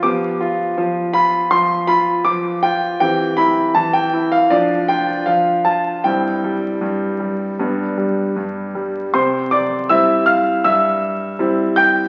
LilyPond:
<<
  \new Staff \with { instrumentName = "Grand piano" } { \time 4/4 \key c \major \tempo 4 = 79 << { d'''4. b''8 c'''8 b''8 d'''8 g''8 | g''8 b''8 a''16 g''8 f''16 d''8 g''8 f''8 a''8 | g''2.~ g''8 r8 | <c'' c'''>8 <d'' d'''>8 <e'' e'''>8 <f'' f'''>8 <e'' e'''>4. <g'' g'''>8 | } \\ { <b g'>1 | <c' g'>2 <d' f'>2 | <c' e'>2 <b d'>2 | r1 | } >> }
  \new Staff \with { instrumentName = "Grand piano" } { \clef bass \time 4/4 \key c \major f8 f'8 f8 f'8 f8 f'8 f8 f'8 | e8 e'8 e8 e'8 f8 f'8 f8 f'8 | g,8 g8 g,8 g8 g,8 g8 g,8 g8 | c4 <g c' e'>4 g,4 <g c' e'>4 | }
>>